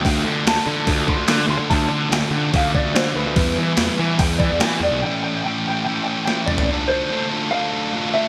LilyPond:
<<
  \new Staff \with { instrumentName = "Clean electric guitar" } { \time 4/4 \key d \dorian \tempo 4 = 145 g''4 a''4. c'''8 r8 c'''8 | a''8 r8 g''4 f''8 d''8 c''8 b'8~ | b'4. r8 g''8 d''8 g''8 d''8 | g''8 g''8 g''8 g''8 g''8 g''8 g''8 d''8 |
r8 c''4 r8 f''4. e''8 | }
  \new Staff \with { instrumentName = "Distorted electric guitar" } { \time 4/4 \key d \dorian <d a d' f'>4 <d a d' f'>8 <a d' f'>8 <d a d' f'>4 <d a d' f'>8 <a d' f'>8 | <d a d' f'>4 <d a d' f'>8 <a d' f'>8 <d a d' f'>4 <d a d' f'>8 <a d' f'>8 | <e g b e'>4 <e g b e'>8 <g b e'>8 <e g b e'>4 <e g b e'>8 <g b e'>8 | <a, e a cis' e'>4 <a, e a cis' e'>8 <a cis' e'>8 <e a cis' e'>4 <e a cis' e'>8 <a cis' e'>8 |
<d a d' f' a'>8 <d' f' a'>8 <a d' f' a'>8 <d' f' a'>8 <d a d' f' a'>4 <a d' f' a'>8 <d' f' a'>8 | }
  \new Staff \with { instrumentName = "Picked electric bass" } { \clef bass \time 4/4 \key d \dorian d,8 d8 d,16 r16 d8 d,8 d16 d,16 d8 d,16 d16 | d,8 d8 d,16 r16 d8 d,8 d16 d,16 d8 d,16 d,16 | e,8 e8 e,16 r16 e8 e,8 e16 e,16 e8 e,16 b,,16 | r1 |
r1 | }
  \new DrumStaff \with { instrumentName = "Drums" } \drummode { \time 4/4 <hho bd>4 <hho sn>4 <hho bd>8 bd8 <hho sn>4 | <hho bd>4 <hho sn>16 sn8. <hho bd>8 bd8 <hho sn>4 | <hho bd>4 <hho sn>4 <hho bd>8 bd8 <hho sn>4 | r4 r4 r4 sn8 toml16 tomfh16 |
r4 r4 r4 r4 | }
>>